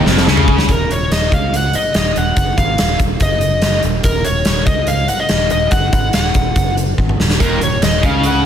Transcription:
0.06 0.26 F1 loud
0.06 0.27 F2 loud
0.06 snare medium
0.17 snare medium
0.27 0.66 C#2 loud
0.27 0.69 C#3 loud
0.27 snare medium
0.37 mid tom medium
0.48 kick loud
0.58 snare medium
0.69 0.89 D#1 medium
0.69 0.92 A#4 medium
0.69 kick medium
0.69 closed hi-hat medium
0.90 1.10 D#1 medium
0.90 1.12 C#5 medium
0.90 closed hi-hat medium
1.11 1.31 D#1 medium
1.11 1.34 D#5 medium
1.11 snare loud
1.11 closed hi-hat medium
1.32 1.71 C#2 medium
1.32 1.55 F5 medium
1.32 kick medium
1.32 closed hi-hat soft
1.54 1.77 F#5 medium
1.54 closed hi-hat medium
1.73 1.94 D#5 medium
1.73 muted fingered electric bass stroke soft
1.73 closed hi-hat medium
1.94 2.15 D#1 medium
1.94 2.18 D#5 medium
1.94 snare loud
1.94 closed hi-hat medium
2.16 2.36 D#1 medium
2.16 2.58 F#5 loud
2.16 closed hi-hat medium
2.36 2.57 F#1 medium
2.36 kick loud
2.36 closed hi-hat medium
2.58 2.78 G#1 medium
2.58 2.97 F5 loud
2.58 kick loud
2.58 closed hi-hat medium
2.78 2.99 D#1 medium
2.78 snare loud
2.78 closed hi-hat medium
2.99 3.19 D#1 medium
2.99 kick medium
2.99 closed hi-hat medium
3.20 3.80 F#1 medium
3.20 3.81 D#5 medium
3.20 kick loud
3.20 closed hi-hat medium
3.41 closed hi-hat medium
3.62 snare loud
3.62 closed hi-hat medium
3.83 4.04 D#1 medium
3.83 closed hi-hat medium
4.04 4.24 D#1 loud
4.04 4.27 A#4 medium
4.04 kick medium
4.04 closed hi-hat medium
4.24 4.46 D#1 medium
4.24 4.64 C#5 medium
4.24 closed hi-hat medium
4.45 4.66 D#1 medium
4.45 snare loud
4.45 closed hi-hat medium
4.66 5.06 C#2 medium
4.66 4.89 D#5 medium
4.66 kick loud
4.66 closed hi-hat medium
4.87 5.08 F5 medium
4.87 closed hi-hat medium
5.08 5.20 F#5 medium
5.08 muted fingered electric bass stroke soft
5.08 closed hi-hat medium
5.20 5.51 D#5 loud
5.29 5.50 D#1 medium
5.29 snare loud
5.29 closed hi-hat medium
5.50 5.72 D#1 medium
5.50 5.71 D#5 medium
5.50 closed hi-hat medium
5.71 5.92 F#1 medium
5.71 5.92 F#5 medium
5.71 kick medium
5.71 closed hi-hat medium
5.93 6.13 G#1 medium
5.93 6.13 F#5 medium
5.93 kick loud
5.93 closed hi-hat medium
6.13 6.34 D#1 medium
6.13 6.73 F#5 medium
6.13 snare loud
6.13 closed hi-hat medium
6.34 6.55 D#1 medium
6.34 kick medium
6.34 closed hi-hat medium
6.56 6.95 F#1 medium
6.56 kick medium
6.56 closed hi-hat medium
6.77 closed hi-hat medium
6.98 7.18 G#1 medium
6.98 kick medium
7.09 mid tom medium
7.19 7.39 D#1 medium
7.19 snare medium
7.30 snare medium
7.40 7.60 D#1 medium
7.40 7.60 D#2 loud
7.40 7.60 A#4 medium
7.40 kick loud
7.40 closed hi-hat medium
7.40 splash medium
7.61 7.81 D#1 medium
7.61 7.78 D#2 medium
7.61 7.83 C#5 medium
7.61 closed hi-hat medium
7.82 8.02 D#1 medium
7.82 7.99 D#2 medium
7.82 8.02 D#5 medium
7.82 snare loud
7.82 closed hi-hat medium
8.02 8.42 C#2 loud
8.02 8.44 C#3 medium
8.02 8.26 F5 medium
8.02 kick loud
8.02 closed hi-hat medium
8.23 8.46 F#5 loud
8.23 closed hi-hat medium

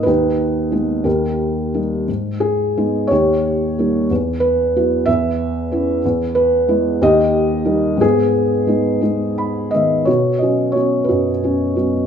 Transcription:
0.03 1.03 D#2 medium
0.03 0.71 D#4 medium
0.03 1.01 B4 medium
0.72 1.05 G#3 soft
0.72 1.05 B3 soft
0.72 1.05 D#4 soft
1.04 2.05 D#2 medium
1.04 2.05 G4 soft
1.04 1.78 A#4 medium
1.74 2.08 G3 soft
1.74 2.08 A#3 soft
1.74 2.08 D#4 soft
2.08 3.07 G#2 soft
2.40 3.11 G#4 medium
2.77 3.10 G#3 soft
2.77 3.10 B3 soft
2.77 3.10 D#4 soft
3.07 4.06 G4 medium
3.07 4.04 C#5 medium
3.11 4.07 D#2 medium
3.79 4.10 G3 soft
3.79 4.10 A#3 soft
3.79 4.10 D#4 soft
4.11 5.05 E2 medium
4.40 5.02 B4 medium
4.76 5.07 F#3 soft
4.76 5.07 B3 soft
4.76 5.07 E4 soft
5.06 6.01 E2 medium
5.06 6.00 B4 medium
5.06 5.99 E5 medium
5.71 6.03 B3 soft
5.71 6.03 C#4 soft
5.71 6.03 E4 soft
6.05 6.98 E2 medium
6.35 6.96 B4 medium
6.68 6.99 G#3 soft
6.68 7.00 B3 soft
6.68 7.00 E4 medium
7.02 7.97 D#2 medium
7.02 7.97 G4 medium
7.02 8.04 D#5 medium
7.65 7.98 G3 soft
7.65 7.98 A#3 soft
7.65 7.98 D#4 medium
7.97 10.03 G#2 medium
7.97 8.65 B3 medium
7.97 9.71 G#4 medium
8.67 9.00 G#3 soft
8.67 9.01 B3 soft
8.67 9.01 D#4 soft
9.01 9.71 G#3 soft
9.01 9.71 B3 soft
9.01 9.71 D#4 soft
9.38 9.71 B5 medium
9.71 10.07 D#3 soft
9.71 10.07 G#3 soft
9.71 10.07 B3 soft
9.71 10.04 D#5 medium
9.71 10.06 E5 soft
10.05 12.07 B2 soft
10.05 11.06 F#4 soft
10.05 10.42 C#5 medium
10.38 10.74 F#3 soft
10.38 10.75 D#5 medium
10.42 10.74 B3 soft
10.42 10.75 C#4 soft
10.72 11.30 F#3 soft
10.72 11.30 B3 soft
10.72 11.09 C#5 medium
10.77 11.31 C#4 soft
11.04 12.06 B4 medium
11.09 12.07 F#2 medium
11.09 12.07 F#4 soft
11.43 11.75 F#3 soft
11.43 11.75 B3 soft
11.43 11.76 C#4 soft
11.76 12.04 F#3 soft
11.76 12.04 B3 soft
11.76 12.04 C#4 soft

